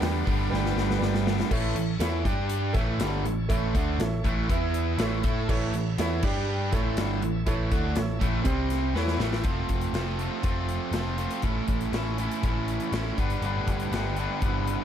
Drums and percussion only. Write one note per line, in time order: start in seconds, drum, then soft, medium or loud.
0.02 snare loud
0.02 open hi-hat medium
0.27 kick medium
0.27 open hi-hat medium
0.54 snare medium
0.66 snare medium
0.78 snare medium
0.91 snare medium
1.02 snare medium
1.14 snare medium
1.27 snare loud
1.40 snare medium
1.51 kick loud
1.51 crash loud
1.76 closed hi-hat medium
2.00 snare loud
2.00 closed hi-hat loud
2.25 kick loud
2.25 closed hi-hat medium
2.49 closed hi-hat medium
2.74 kick loud
2.74 snare soft
2.74 closed hi-hat medium
3.00 snare loud
3.00 closed hi-hat loud
3.25 closed hi-hat medium
3.50 kick loud
3.50 closed hi-hat medium
3.75 kick loud
3.75 closed hi-hat medium
4.00 snare loud
4.00 closed hi-hat medium
4.24 kick loud
4.24 closed hi-hat medium
4.49 kick loud
4.49 closed hi-hat medium
4.74 closed hi-hat medium
4.99 snare loud
4.99 closed hi-hat medium
5.23 kick loud
5.23 closed hi-hat medium
5.49 kick loud
5.49 crash loud
5.74 closed hi-hat medium
5.98 snare loud
5.98 closed hi-hat loud
6.23 kick loud
6.23 crash loud
6.72 kick loud
6.72 snare soft
6.72 closed hi-hat medium
6.97 snare loud
6.97 closed hi-hat loud
7.22 closed hi-hat medium
7.47 kick loud
7.47 closed hi-hat medium
7.71 kick loud
7.71 closed hi-hat medium
7.96 snare loud
7.96 closed hi-hat medium
8.21 kick loud
8.21 closed hi-hat medium
8.45 kick loud
8.45 closed hi-hat medium
8.70 snare soft
8.70 closed hi-hat medium
8.96 snare medium
9.08 snare medium
9.20 snare medium
9.33 snare medium
9.44 kick loud
9.44 closed hi-hat medium
9.69 kick medium
9.69 closed hi-hat medium
9.81 closed hi-hat medium
9.94 snare loud
9.94 closed hi-hat medium
10.19 closed hi-hat medium
10.43 kick loud
10.43 closed hi-hat medium
10.69 closed hi-hat medium
10.93 snare loud
10.93 closed hi-hat medium
11.18 closed hi-hat medium
11.31 closed hi-hat medium
11.42 kick loud
11.42 closed hi-hat medium
11.68 kick medium
11.68 closed hi-hat medium
11.81 closed hi-hat medium
11.93 snare loud
11.93 closed hi-hat medium
12.18 closed hi-hat medium
12.31 closed hi-hat medium
12.43 kick loud
12.43 closed hi-hat medium
12.68 closed hi-hat medium
12.80 closed hi-hat medium
12.93 snare loud
12.93 closed hi-hat medium
13.18 kick loud
13.18 closed hi-hat medium
13.30 closed hi-hat medium
13.42 closed hi-hat medium
13.68 kick medium
13.68 closed hi-hat medium
13.80 closed hi-hat medium
13.93 snare loud
13.93 closed hi-hat medium
14.17 closed hi-hat medium
14.42 kick loud
14.42 closed hi-hat medium
14.67 closed hi-hat medium